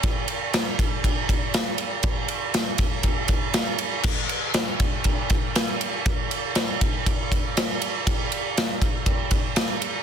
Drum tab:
CC |--------|--------|x-------|--------|
RD |xxxxxxxx|xxxxxxxx|-xxxxxxx|xxxxxxxx|
SD |--o---o-|--o---o-|--o---o-|--o---o-|
BD |o--ooo--|o--ooo--|o--ooo--|o--ooo--|

CC |--------|
RD |xxxxxxxx|
SD |--o---o-|
BD |o--ooo--|